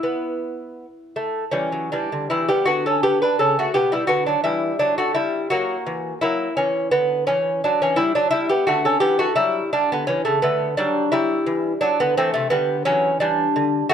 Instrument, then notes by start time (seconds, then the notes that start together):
lute
Already playing: E4
0.03 B3
1.16 A3
1.51 E3 G3 C#4
1.72 F#3
1.92 E3 G3 D4
2.12 D3
2.30 E3 G3 E4
2.48 G3 B3 G4
2.65 D3 B3 F#4
2.86 C#4 A4
3.03 B3 G4
3.22 D4 B4
3.39 C#3 C#4 A4
3.59 A3 F#4
3.74 B2 B3 G4
3.92 G3 E4
4.07 D3 B3 F#4
4.26 F#3 D4
4.44 E3 G3 E4
4.79 F#3 D4
4.98 A3 F#4
5.15 G3 E4
5.50 F#3 A#3 F#4
5.86 E3
6.21 F#3 A#3 E4
6.57 E3 C#4
6.91 D3 B3
7.27 E3 C#4
7.64 F#3 D4
7.82 E3 C#4
7.96 G3 E4
8.15 F#3 D4
8.31 G3 E4
8.49 B3 G4
8.67 D3 A3 F#4
8.85 C#4 A4
9.00 E3 B3 G4
9.19 A3 F#4
9.36 F#3 G3 E4
9.73 G3 D4
9.92 D3 B3
10.07 E3 C#4
10.25 C#3 A3
10.42 D3 A3 B3
10.77 F#3 G3 D4
11.12 F#3 G3 E4
11.46 E3
11.81 F#3 D4
12.00 D3 B3
12.17 E3 A3 C4
12.34 C3 A3
12.50 D3 G3 B3
12.85 E3 F#3 C#4
13.20 E3 G3 D4
13.56 D3
13.89 A3 F#4